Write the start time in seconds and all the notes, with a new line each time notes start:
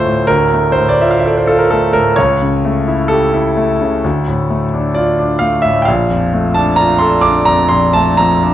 Already playing: D2 A2 A3 F4 A4 C5 D5
0.05 A2
0.27 D2 A#4
0.53 A3
0.72 C5
0.78 A2
0.89 D5
1.01 F4 E5
1.11 F5
1.20 E5
1.26 A4 D5
1.37 C5
1.47 F4 A4
1.59 A#4
1.71 A3 A4
1.93 A2 A#4
2.16 C#2 C#5
2.42 C#3
2.65 A3
2.88 E4
3.08 G4 A4
3.33 E4
3.57 A3
3.81 C#3
4.04 D2
4.28 A2
4.50 A3
4.74 D4
4.94 F4 D5
5.19 D4
5.39 A3 F5
5.62 A2 E5
5.82 F5 G5
5.88 A#1
6.11 F2
6.33 A3
6.54 D4 A5
6.76 F4 A#5
6.98 A4 C6
7.21 D4 D6
7.45 F2 A#5
7.69 A#1 C6
7.93 A3 A5
8.17 F2 A#5
8.43 D4